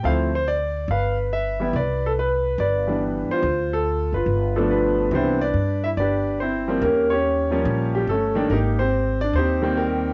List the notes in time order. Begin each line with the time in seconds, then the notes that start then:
0.03 D2 F3 A3 C4 E4 C5 F5
0.35 C5
0.48 D5
0.88 G1 B4 F5
1.33 E5
1.60 E3 G3 B3 E4
1.73 C2 B4 D5
2.06 A4
2.19 B4
2.58 G1 B4 D5
2.87 E3 G3 B3 D4
3.28 C5, muted upright bass stroke
3.33 F4
3.42 D2
3.73 A4
4.12 F#1 F4 B4
4.26 G1
4.56 F3 A3 B3 D4 A4
4.71 B3 F4 B4
5.11 C2 E3 G3 B3 D4
5.15 C4 E4 G4 C5
5.41 D4 B4 D5
5.54 G2
5.84 E4 E5
5.97 G1 D4 G4 B4 D5
6.40 C4 E4 C5
6.67 F3 G3 A#3 C4
6.81 D#2 A#3 C#4 G4 A#4
7.10 C#4 G4 C#5
7.50 F3 G3 A#3 C#4
7.65 A#1
7.95 G3 G4
8.07 G1 A3 C#4 A4
8.35 D#3 G3 A#3 D4
8.50 G#1 A#3 D#4 G4 A#4
8.79 C4 G4 C5
9.21 D4 D5
9.33 D#2 C5
9.38 C4 D#4 G4
9.62 D#3 G3 A#3 C4
9.77 A#3 G4 A#4